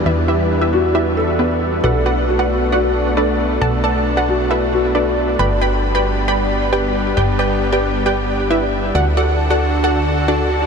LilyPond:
<<
  \new Staff \with { instrumentName = "Synth pluck" } { \time 4/4 \key g \major \tempo 4 = 135 <e' g' b' e''>8 <e' g' b' e''>8 r16 <e' g' b' e''>8 r16 <e' g' b' e''>8. r16 <b e' g' b'>8. r16 | <fis' b' d'' fis''>8 <fis' b' d'' fis''>8 r16 <fis' b' d'' fis''>8 r16 <fis' b' d'' fis''>8. r16 <d' a' b' d''>8. r16 | <a' d'' fis'' a''>8 <a' d'' fis'' a''>8 r16 <fis' b' d'' fis''>8 r16 <e' a' b' e''>8. r16 <d' a' b' d''>8. r16 | <b' d'' g'' b''>8 <b' d'' g'' b''>8 r16 <b' d'' g'' b''>8 r16 <b' d'' g'' b''>8. r16 <g' b' d'' g''>8. r16 |
<g' b' d'' g''>8 <g' b' d'' g''>8 r16 <g' b' d'' g''>8 r16 <g' b' d'' g''>8. r16 <e' g' b' e''>8. r16 | <fis' a' d'' fis''>8 <fis' a' d'' fis''>8 r16 <fis' a' d'' fis''>8 r16 <fis' a' d'' fis''>8. r16 <d' fis' a' d''>8. r16 | }
  \new Staff \with { instrumentName = "Felt piano" } { \time 4/4 \key g \major r4. fis'4 a'4. | a'4 fis'4 fis'4. r8 | r4. fis'4 fis'4. | r1 |
r1 | r1 | }
  \new Staff \with { instrumentName = "Analog synth pad" } { \time 4/4 \key g \major << { d'1~ | d'1~ | d'1 | b1~ |
b1 | fis'1 | } \\ { <e g b>1 | a1~ | a1 | g1~ |
g1 | <d d' a'>1 | } >> }
  \new Staff \with { instrumentName = "Analog synth bass" } { \clef bass \time 4/4 \key g \major e,1 | b,,1 | b,,1 | g,,1 |
g,,1 | d,1 | }
>>